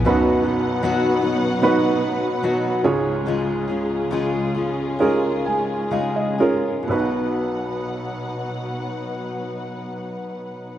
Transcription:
<<
  \new Staff \with { instrumentName = "Upright piano" } { \time 4/4 \key b \major \tempo 4 = 67 << { r1 | r2 r8 gis''8 eis''16 dis''16 cis''8 | r1 | } \\ { <b dis' fis' b'>2 <b dis' fis' b'>4. <cis' eis' gis' cis''>8~ | <cis' eis' gis' cis''>4. r8 <cis' eis' gis' ais'>4. <cis' eis' gis' ais'>8 | <b dis' fis' b'>1 | } >> }
  \new Staff \with { instrumentName = "Upright piano" } { \clef bass \time 4/4 \key b \major <b,, fis,>2.~ <b,, fis,>8 <cis, gis,>8~ | <cis, gis,>2.~ <cis, gis,>8 r8 | b,,1 | }
  \new Staff \with { instrumentName = "String section" } { \time 4/4 \key b \major <b, fis dis' b' fis''>2.~ <b, fis dis' b' fis''>8 <cis, cis gis eis' gis'>8~ | <cis, cis gis eis' gis'>1 | <b, fis dis' b' fis''>1 | }
  \new Staff \with { instrumentName = "Steel-string acoustic guitar" } { \time 4/4 \key b \major <b, fis b dis' fis'>8 <b dis' fis'>8 <b, fis b dis' fis'>8 <b dis' fis'>8 <fis b dis' fis'>4 <b, fis b dis' fis'>8 <cis' eis' gis'>8 | <cis gis cis' eis' gis'>8 <cis' eis' gis'>8 <cis gis cis' eis' gis'>8 <cis' eis' gis'>8 <gis cis' eis' gis'>4 <cis gis cis' eis' gis'>8 <cis' eis' gis'>8 | <b, fis b dis' b'>1 | }
>>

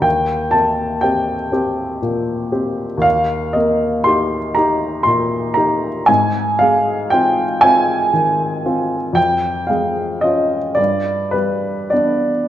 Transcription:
\new Staff \with { instrumentName = "Grand piano" } { \time 6/8 \key ees \lydian \tempo 4. = 39 << { g''8 a''8 g''8 r4. | \key aes \lydian f''8 ees''8 c'''8 bes''8 c'''8 bes''8 | aes''8 f''8 g''8 aes''4. | g''8 f''8 ees''8 d''8 b'8 d''8 | } \\ { ees,8 bes8 <c' g'>8 <c' g'>8 bes,8 <c' g'>8 | ees,8 bes8 <ees' g'>8 <ees' g'>8 bes,8 <ees' g'>8 | aes,8 aes8 <c' f'>8 <c' f'>8 ees8 <c' f'>8 | f,8 aes8 <des' f'>8 g,8 g8 <b d'>8 | } >> }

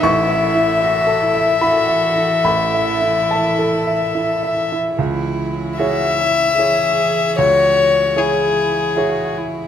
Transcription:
<<
  \new Staff \with { instrumentName = "Violin" } { \time 3/4 \key cis \minor \tempo 4 = 75 e''2.~ | e''2~ e''8. r16 | r4 e''2 | cis''4 gis'4. r8 | }
  \new Staff \with { instrumentName = "String section" } { \time 3/4 \key cis \minor <e a' e''>2.~ | <e a' e''>2. | <e gis' cis''>2.~ | <e gis' cis''>2. | }
  \new Staff \with { instrumentName = "Upright piano" } { \time 3/4 \key cis \minor << { cis'''2 b''4 | b''4 a''4 r4 | r2. | r2. | } \\ { \tuplet 3/2 { a,,8 e''8 e'8 e''8 a'8 e''8 e'8 e''8 e'8 } | \tuplet 3/2 { a,,8 e''8 e'8 e''8 a'8 e''8 e'8 e''8 e'8 } | cis,4 <e' gis' cis''>4 <e' gis' cis''>4 | cis,4 <e' gis' cis''>4 <e' gis' cis''>4 | } >> }
  \new Staff \with { instrumentName = "Cello" } { \time 3/4 \key cis \minor e'4 fis'8 e'8 fis'4 | e'2~ e'8 r8 | e'4 fis'8 e'8 gis'4 | fis'4 e'4 fis'8 e'8 | }
>>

